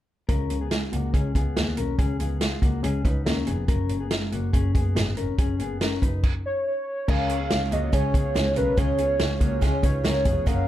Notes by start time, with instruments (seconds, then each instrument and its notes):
0.29 double bass C#2, clean electric guitar C#4 A#4, kick, closed hi-hat
0.50 double bass C#2, closed hi-hat
0.61 clean electric guitar B3 G#4
0.71 clean electric guitar G#3 F4, snare, closed hi-hat
0.92 double bass C#2, clean electric guitar A#3 F#4, closed hi-hat
1.14 double bass C#2, clean electric guitar C#4 G#4, kick, closed hi-hat
1.35 double bass C#2, clean electric guitar B3 G#4, kick, closed hi-hat
1.56 double bass D#2, snare, closed hi-hat
1.77 double bass B1, clean electric guitar C#4 A#4, closed hi-hat
1.99 double bass C#2, clean electric guitar C#4 G#4, kick, closed hi-hat
2.20 double bass C#2, clean electric guitar B3 G#4, closed hi-hat
2.41 clean electric guitar G#3 F4, snare, closed hi-hat
2.62 double bass C#2, clean electric guitar A#3 F#4, kick, closed hi-hat
2.83 double bass C#2, clean electric guitar C#4 G#4, closed hi-hat
3.05 double bass C#2, clean electric guitar D#4 B4, kick, closed hi-hat
3.26 double bass D#2, clean electric guitar C#4 A#4, snare, closed hi-hat
3.47 double bass F1, clean electric guitar B3 G#4, closed hi-hat
3.68 double bass F#1, clean electric guitar C#4 A#4, kick, closed hi-hat
3.89 double bass F#1, closed hi-hat
4.00 clean electric guitar B3 G#4
4.11 clean electric guitar G#3 F4, snare, closed hi-hat
4.32 double bass F#1, clean electric guitar A#3 F#4, closed hi-hat
4.53 double bass F#1, clean electric guitar C#4 G#4, kick, closed hi-hat
4.75 double bass F#1, clean electric guitar B3 G#4, kick, closed hi-hat
4.96 double bass G#1, snare, closed hi-hat
5.17 double bass F1, clean electric guitar C#4 A#4, closed hi-hat
5.38 double bass F#1, clean electric guitar C#4 G#4, kick, closed hi-hat
5.59 double bass F#1, clean electric guitar B3 G#4, closed hi-hat
5.81 clean electric guitar C#4 A#4, snare, closed hi-hat
6.02 double bass F#1, clean electric guitar D#4 B4, kick, closed hi-hat
6.23 kick, crash
6.46 soft synth lead C#5
6.67 soft synth lead C#5
7.08 double bass C#2, twelve-string acoustic guitar C#3 G#3 C#4 F4 G#4, clean electric guitar C#4 A#4, soft synth lead F5, kick, crash
7.29 twelve-string acoustic guitar C#4 F4 G#4, closed hi-hat
7.40 clean electric guitar B3 G#4
7.50 double bass C#2, clean electric guitar G#3 F4, snare, closed hi-hat
7.71 double bass C#2, clean electric guitar A#3 F#4, twelve-string acoustic guitar C#4 F4 G#4, soft synth lead D#5, closed hi-hat
7.92 double bass C#2, twelve-string acoustic guitar C#3 G#3 C#4 F4 G#4, clean electric guitar C#4 G#4, soft synth lead C#5, kick, closed hi-hat
8.13 double bass C#2, clean electric guitar B3 G#4, twelve-string acoustic guitar C#4 F4 G#4, kick, closed hi-hat
8.34 double bass C#2, twelve-string acoustic guitar G#3 C#4 F4 G#4, snare, closed hi-hat
8.55 double bass B1, twelve-string acoustic guitar C#4 F4 G#4, clean electric guitar C#4 A#4, soft synth lead B4, closed hi-hat
8.77 double bass C#2, twelve-string acoustic guitar C#3 G#3 C#4 F4 G#4, clean electric guitar C#4 G#4, soft synth lead C#5, kick, closed hi-hat
8.98 clean electric guitar B3 G#4, twelve-string acoustic guitar C#4 F4 G#4, closed hi-hat
9.19 double bass C#2, clean electric guitar G#3 F4, snare, closed hi-hat
9.40 double bass C#2, clean electric guitar A#3 F#4, twelve-string acoustic guitar C#4 F4 G#4, kick, closed hi-hat
9.61 double bass C#2, twelve-string acoustic guitar C#3 G#3 C#4 F4 G#4, clean electric guitar C#4 G#4, kick, snare, closed hi-hat
9.82 double bass C#2, twelve-string acoustic guitar C#4 F4 G#4, clean electric guitar D#4 B4, soft synth lead C#5, kick, closed hi-hat
10.04 double bass C#2, twelve-string acoustic guitar G#3 C#4 F4 G#4, clean electric guitar C#4 A#4, soft synth lead C#5, snare, closed hi-hat
10.25 double bass F1, clean electric guitar B3 G#4, twelve-string acoustic guitar C#4 F4 G#4, kick, closed hi-hat
10.46 double bass F#1, twelve-string acoustic guitar F#3 A#3 C#4 F#4 G#4, clean electric guitar C#4 A#4, soft synth lead F5, kick, closed hi-hat